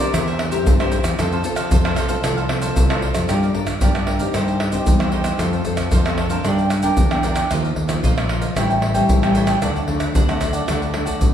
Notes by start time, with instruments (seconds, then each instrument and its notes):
Already playing: nylon-string guitar D3
0.00 nylon-string guitar C4 G4 A#4, cavaquinho A#4 C5 D5
0.13 fretless electric bass E2, nylon-string guitar E3, cavaquinho E4 A#4 C5 E5, pandeiro, tamborim, maracas, surdo
0.27 cavaquinho A#4 C5 E5, pandeiro, maracas
0.39 muted cavaquinho stroke, pandeiro, tamborim
0.51 nylon-string guitar C4 G4 A#4, cavaquinho A#4 C5 E5, pandeiro, maracas
0.66 fretless electric bass G2, nylon-string guitar E3, pandeiro, maracas, surdo
0.79 nylon-string guitar C4 G4 A#4, cavaquinho A#4 C5 E5, pandeiro, tamborim, maracas
0.91 cavaquinho E4 A#4 C5 E5, pandeiro, maracas
1.04 fretless electric bass E2, pandeiro, tamborim, maracas
1.18 fretless electric bass F2, nylon-string guitar F3 C4 F4 A4, cavaquinho F4 A4 C5 F5, pandeiro, tamborim, maracas, surdo
1.32 cavaquinho A4 C5 F5, pandeiro, maracas
1.44 nylon-string guitar C4 F4 A4, muted cavaquinho stroke, pandeiro, maracas
1.56 cavaquinho A4 C5 F5, pandeiro, tamborim, maracas
1.71 fretless electric bass F2, nylon-string guitar C3, cavaquinho F4 A4 C5 F5, pandeiro, maracas, surdo
1.84 nylon-string guitar C4 F4 A4, cavaquinho A4 C5 F5, pandeiro, tamborim, maracas
1.96 cavaquinho F4 A4 C5 F5, pandeiro, tamborim, maracas
2.08 nylon-string guitar C4 F4 A4, cavaquinho A4 C5 F5, pandeiro, maracas
2.23 fretless electric bass C2, nylon-string guitar F3 C4 F4 A4, cavaquinho F4 A4 C5 F5, pandeiro, tamborim, maracas, surdo
2.37 cavaquinho A4 C5 F5, pandeiro, maracas
2.48 nylon-string guitar C4 F4 A4, muted cavaquinho stroke, pandeiro, tamborim
2.61 cavaquinho A4 C5 F5, pandeiro, maracas
2.76 fretless electric bass C2, nylon-string guitar C3, pandeiro, maracas, surdo
2.89 nylon-string guitar C4 F4 A4, cavaquinho A4 C5 F5, pandeiro, tamborim, maracas
3.01 cavaquinho F4 A4 C5 F5, pandeiro
3.15 fretless electric bass F2, pandeiro, tamborim, maracas
3.29 fretless electric bass G2, nylon-string guitar G3 D4 F4 A#4, cavaquinho G4 A#4 D5 F5, pandeiro, tamborim, maracas, surdo
3.42 cavaquinho A#4 D5 F5, pandeiro, maracas
3.54 fretless electric bass G2, nylon-string guitar D4 F4 A#4, muted cavaquinho stroke, pandeiro, surdo
3.67 pandeiro, tamborim, maracas, surdo
3.81 fretless electric bass G2, nylon-string guitar D3 D4 F4 A#4, cavaquinho G4 A#4 D5 F5, pandeiro, maracas, surdo
3.95 cavaquinho A#4 D5 F5, pandeiro, tamborim, maracas
4.06 cavaquinho G4 A#4 D5 F5, pandeiro, tamborim
4.18 nylon-string guitar C4 D#4 G4, cavaquinho A#4 D5 F5, pandeiro, maracas, surdo
4.33 fretless electric bass G2, nylon-string guitar G3, cavaquinho D#4 G4 C5 D#5, pandeiro, tamborim, maracas, surdo
4.47 cavaquinho G4 C5 D#5, pandeiro, maracas
4.59 muted cavaquinho stroke, pandeiro, tamborim
4.71 nylon-string guitar C4 D#4 G4, cavaquinho G4 C5 D#5, pandeiro, maracas, surdo
4.86 fretless electric bass E2, nylon-string guitar G3, pandeiro, maracas, surdo
5.00 cavaquinho G4 C5 D#5, pandeiro, tamborim, maracas
5.12 nylon-string guitar C4 D#4 G4, cavaquinho D#4 G4 C5 D#5, pandeiro, surdo
5.24 cavaquinho G4 C5 D#5, pandeiro, tamborim, maracas
5.39 fretless electric bass F2, nylon-string guitar F3 C4 F4 A4, cavaquinho F4 A4 C5 F5, pandeiro, tamborim, maracas, surdo
5.52 cavaquinho A4 C5 F5, pandeiro, maracas
5.65 fretless electric bass F2, nylon-string guitar C4 F4 A4, muted cavaquinho stroke, pandeiro, maracas, surdo
5.77 pandeiro, tamborim, maracas, surdo
5.91 fretless electric bass F2, nylon-string guitar C3, cavaquinho F4 A4 C5 F5, pandeiro, maracas, surdo
6.06 nylon-string guitar C4 F4 A4, cavaquinho A4 C5 F5, pandeiro, tamborim, maracas
6.18 cavaquinho F4 A4 C5 F5, pandeiro, tamborim
6.30 nylon-string guitar A#3 D4 A#4, cavaquinho A4 C5 F5, pandeiro, maracas, surdo
6.45 fretless electric bass G2, nylon-string guitar G3, cavaquinho D4 A#4 D5 G5, pandeiro, tamborim, maracas, surdo
6.58 cavaquinho A#4 D5 G5, pandeiro, maracas
6.70 muted cavaquinho stroke, pandeiro, tamborim, maracas
6.83 nylon-string guitar A#3 D4 A#4, cavaquinho A#4 D5 G5, pandeiro, maracas, surdo
6.97 fretless electric bass E2, nylon-string guitar D3, pandeiro, maracas, surdo
7.11 cavaquinho A#4 D5 G5, pandeiro, tamborim, maracas
7.23 nylon-string guitar A#3 D4 A#4, cavaquinho D4 A#4 D5 G5, pandeiro, maracas
7.36 cavaquinho A#4 D5 G5, pandeiro, tamborim, maracas
7.50 fretless electric bass D#2, nylon-string guitar D#3 F3 A#3 F4, cavaquinho F4 A#4 D#5 F5, pandeiro, tamborim, maracas, surdo
7.64 cavaquinho A#4 D#5 F5, pandeiro, maracas
7.76 fretless electric bass D#2, muted cavaquinho stroke, pandeiro, surdo
7.89 nylon-string guitar F3 A#3 F4, pandeiro, tamborim, maracas, surdo
8.03 fretless electric bass A#1, nylon-string guitar A#2, cavaquinho F4 A#4 D#5 F5, pandeiro, maracas, surdo
8.17 nylon-string guitar F3 A#3 F4, cavaquinho A#4 D#5 F5, pandeiro, tamborim, maracas
8.29 cavaquinho F4 A#4 D#5 F5, pandeiro, tamborim
8.41 cavaquinho A#4 D#5 F5, pandeiro, maracas, surdo
8.56 fretless electric bass A1, nylon-string guitar A2 G3 C#4 E4, cavaquinho E4 A4 C#5 G5, pandeiro, tamborim, maracas, surdo
8.70 cavaquinho A4 C#5 G5, pandeiro, maracas
8.82 muted cavaquinho stroke, pandeiro, tamborim
8.94 nylon-string guitar G3 C#4 E4, cavaquinho A4 C#5 G5, pandeiro, maracas, surdo
9.09 fretless electric bass A1, nylon-string guitar E3, pandeiro, maracas, surdo
9.23 nylon-string guitar G3 C#4 E4, cavaquinho A4 C#5 G5, pandeiro, tamborim, maracas
9.35 cavaquinho E4 A4 C#5 G5, pandeiro, maracas
9.47 cavaquinho A4 C#5 G5, pandeiro, tamborim, maracas
9.62 fretless electric bass D2, nylon-string guitar D3 F#3 A3 D4, cavaquinho D4 A4 D5 F#5, pandeiro, tamborim, maracas, surdo
9.75 cavaquinho A4 D5 F#5, pandeiro, maracas
9.88 fretless electric bass D2, nylon-string guitar F#3 A3 D4, muted cavaquinho stroke, pandeiro, surdo
10.00 pandeiro, tamborim, maracas, surdo
10.14 fretless electric bass D2, nylon-string guitar A2, cavaquinho D4 A4 D5 F#5, pandeiro, maracas, surdo
10.28 nylon-string guitar F#3 A3 D4, cavaquinho A4 D5 F#5, pandeiro, tamborim, maracas
10.40 cavaquinho D4 A4 D5 F#5, pandeiro, tamborim, maracas
10.53 cavaquinho A4 D5 F#5, pandeiro, maracas, surdo
10.67 fretless electric bass D2, nylon-string guitar D3 F#3 A3 D4, cavaquinho D4 A4 D5 F#5, pandeiro, tamborim, maracas, surdo
10.82 cavaquinho A4 D5 F#5, pandeiro, maracas
10.94 nylon-string guitar F#3 A3 D4, muted cavaquinho stroke, pandeiro, tamborim
11.05 cavaquinho A4 D5 F#5, pandeiro, maracas, surdo
11.21 fretless electric bass D2, nylon-string guitar A2, pandeiro, maracas, surdo